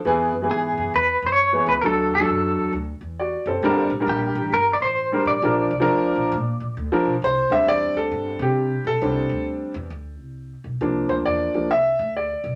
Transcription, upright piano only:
0.05 0.31 E3 medium
0.05 0.32 B3 medium
0.05 0.32 G#4 loud
0.42 0.95 E3 medium
0.42 0.96 B3 medium
0.42 0.96 G#4 medium
1.53 1.74 E3 medium
1.53 1.75 B3 medium
1.53 1.75 G#4 medium
1.84 2.10 F#3 medium
1.84 2.11 D4 medium
1.84 2.11 A4 medium
2.19 2.73 F#3 medium
2.19 2.74 D4 medium
2.19 2.74 A4 medium
3.19 3.46 F#4 medium
3.19 3.46 D5 medium
3.47 3.90 C4 medium
3.47 3.89 A4 medium
3.63 3.90 G3 medium
3.63 3.90 D4 medium
3.63 3.90 A#4 loud
4.00 4.53 G3 medium
4.00 4.54 D4 medium
4.00 4.54 A#4 medium
5.12 5.33 G3 medium
5.12 5.34 D4 medium
5.12 5.34 A#4 medium
5.43 5.69 F3 medium
5.43 5.70 D4 medium
5.43 5.70 A#4 medium
5.80 6.33 F3 medium
5.80 6.33 D4 medium
5.80 6.34 A#4 loud
6.92 7.13 F3 loud
6.92 7.13 D4 medium
6.92 7.14 A#4 medium
7.24 7.52 C5 loud
7.50 9.00 G3 medium
7.50 9.01 C4 soft
7.50 9.01 D4 medium
7.50 7.68 E5 loud
7.68 7.97 D5 loud
7.97 8.42 A4 loud
8.42 8.83 G4 medium
8.87 9.43 A4 loud
9.02 9.71 G3 medium
9.02 9.71 C4 medium
9.02 9.72 D4 medium
10.81 11.50 F3 medium
10.81 11.51 A#3 medium
10.81 11.51 D4 medium
11.09 11.14 C5 medium
11.26 11.72 D5 medium
11.55 11.69 F3 soft
11.55 11.69 A#3 soft
11.55 11.70 D4 soft
11.71 12.12 E5 loud
12.17 12.55 D5 medium

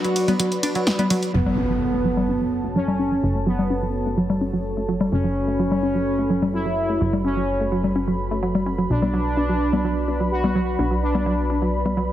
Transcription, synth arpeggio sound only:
0.05 0.11 F#3 medium
0.05 0.11 F#4 soft
0.28 0.32 B3 medium
0.28 0.32 B4 medium
0.40 0.49 F#3 loud
0.40 0.49 F#4 medium
0.63 0.67 D4 medium
0.63 0.67 D5 medium
0.75 0.82 F#3 medium
0.75 0.82 F#4 medium
0.99 1.03 B3 medium
0.99 1.03 B4 medium
1.10 1.20 F#3 loud
1.10 1.20 F#4 medium
1.34 1.44 F#3 loud
1.58 1.62 C#4 medium
1.70 1.76 F#3 medium
1.94 1.97 A3 medium
2.05 2.15 F#3 loud
2.29 2.33 C#4 medium
2.41 2.47 F#3 medium
2.64 2.68 A3 medium
2.76 2.86 F#3 medium
2.99 3.03 C#4 medium
3.12 3.18 F#3 medium
3.35 3.39 A3 medium
3.47 3.56 F#3 loud
3.70 3.74 C#4 medium
3.82 3.89 F#3 medium
4.06 4.10 A3 medium
4.17 4.27 F#3 loud
4.41 4.45 C#4 medium
4.53 4.59 F#3 medium
4.77 4.81 A3 medium
4.88 4.98 F#3 medium
5.12 5.16 C#4 medium
5.24 5.30 F#3 medium
5.48 5.52 A3 medium
5.59 5.69 F#3 loud
5.83 5.87 C#4 medium
5.95 6.01 F#3 medium
6.19 6.22 A3 medium
6.30 6.40 F#3 loud
6.54 6.58 C#4 medium
6.66 6.72 F#3 medium
6.89 6.93 A3 medium
7.01 7.11 F#3 loud
7.25 7.29 C#4 medium
7.37 7.43 F#3 medium
7.60 7.64 A3 medium
7.72 7.82 F#3 medium
7.96 7.99 C#4 medium
8.08 8.14 F#3 medium
8.31 8.35 A3 medium
8.43 8.53 F#3 medium
8.66 8.70 C#4 medium
8.78 8.85 F#3 medium
9.02 9.06 B3 medium
9.14 9.23 F#3 loud
9.37 9.41 D4 medium
9.49 9.56 F#3 medium
9.73 9.77 B3 medium
9.84 9.94 F#3 medium
10.08 10.12 D4 medium
10.20 10.26 F#3 medium
10.44 10.48 B3 medium
10.55 10.65 F#3 loud
10.79 10.83 D4 medium
10.91 10.97 F#3 medium
11.15 11.18 B3 medium
11.26 11.36 F#3 loud
11.50 11.54 D4 medium
11.62 11.68 F#3 medium
11.86 11.89 B3 medium
11.97 12.07 F#3 loud

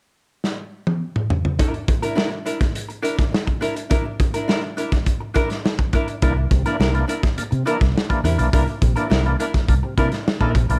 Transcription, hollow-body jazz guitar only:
1.59 1.80 D4 medium
1.59 1.73 E4 medium
1.59 1.73 A#4 medium
1.74 muted hollow-body jazz guitar stroke soft
1.88 muted hollow-body jazz guitar stroke soft
2.02 2.14 D4 medium
2.02 2.15 E4 medium
2.02 2.16 A#4 medium
2.15 2.38 D4 medium
2.15 2.30 E4 medium
2.15 2.30 A#4 medium
2.31 muted hollow-body jazz guitar stroke soft
2.46 2.62 D4 medium
2.46 2.59 E4 medium
2.46 2.58 A#4 medium
2.60 muted hollow-body jazz guitar stroke soft
2.89 muted hollow-body jazz guitar stroke soft
3.03 3.24 D4 medium
3.03 3.17 E4 medium
3.03 3.16 A#4 medium
3.17 muted hollow-body jazz guitar stroke soft
3.32 muted hollow-body jazz guitar stroke soft
3.47 muted hollow-body jazz guitar stroke soft
3.61 3.83 D4 medium
3.61 3.75 E4 medium
3.61 3.75 A#4 medium
3.76 muted hollow-body jazz guitar stroke soft
3.90 4.12 D4 medium
3.90 4.05 E4 medium
3.90 4.04 A#4 medium
4.05 muted hollow-body jazz guitar stroke soft
4.20 muted hollow-body jazz guitar stroke soft
4.34 4.47 D4 soft
4.34 4.48 E4 medium
4.34 4.48 A#4 medium
4.48 4.69 D4 medium
4.48 4.62 E4 medium
4.48 4.62 A#4 medium
4.63 muted hollow-body jazz guitar stroke soft
4.77 4.94 D4 medium
4.77 4.92 E4 medium
4.77 4.91 A#4 medium
4.92 muted hollow-body jazz guitar stroke soft
5.20 muted hollow-body jazz guitar stroke soft
5.34 5.56 D4 medium
5.34 5.49 E4 medium
5.34 5.48 A#4 loud
5.50 muted hollow-body jazz guitar stroke soft
5.64 muted hollow-body jazz guitar stroke soft
5.79 muted hollow-body jazz guitar stroke soft
5.94 6.15 D4 medium
5.94 6.08 E4 medium
5.94 6.07 A#4 medium
6.08 muted hollow-body jazz guitar stroke soft
6.22 6.43 D4 medium
6.22 6.37 E4 medium
6.22 6.36 A#4 medium
6.37 muted hollow-body jazz guitar stroke soft
6.51 muted hollow-body jazz guitar stroke soft
6.66 6.79 D4 medium
6.66 6.79 E4 medium
6.66 6.80 A#4 medium
6.80 7.01 D4 medium
6.80 6.94 E4 medium
6.80 6.93 A#4 medium
6.94 muted hollow-body jazz guitar stroke soft
7.08 7.25 D4 medium
7.08 7.22 E4 medium
7.08 7.22 A#4 medium
7.23 muted hollow-body jazz guitar stroke soft
7.51 muted hollow-body jazz guitar stroke soft
7.66 7.87 D4 medium
7.66 7.80 E4 medium
7.66 7.79 A#4 medium
7.80 muted hollow-body jazz guitar stroke medium
7.95 muted hollow-body jazz guitar stroke soft
8.09 muted hollow-body jazz guitar stroke soft
8.24 8.45 D4 medium
8.24 8.38 E4 medium
8.24 8.38 A#4 medium
8.39 muted hollow-body jazz guitar stroke soft
8.53 8.74 D4 medium
8.53 8.67 E4 medium
8.53 8.67 A#4 medium
8.68 muted hollow-body jazz guitar stroke soft
8.82 muted hollow-body jazz guitar stroke soft
8.96 9.09 D4 medium
8.96 9.09 E4 medium
8.96 9.10 A#4 medium
9.10 9.31 D4 medium
9.10 9.24 E4 medium
9.10 9.23 A#4 medium
9.25 muted hollow-body jazz guitar stroke soft
9.40 9.56 D4 medium
9.40 9.53 E4 medium
9.40 9.53 A#4 medium
9.54 muted hollow-body jazz guitar stroke soft
9.83 muted hollow-body jazz guitar stroke soft
9.98 10.19 D4 medium
9.98 10.11 E4 medium
9.98 10.11 A#4 medium
10.12 muted hollow-body jazz guitar stroke soft
10.27 muted hollow-body jazz guitar stroke soft
10.41 10.54 D4 medium
10.41 10.55 E4 medium
10.41 10.55 A#4 medium
10.55 muted hollow-body jazz guitar stroke soft
10.69 muted hollow-body jazz guitar stroke soft

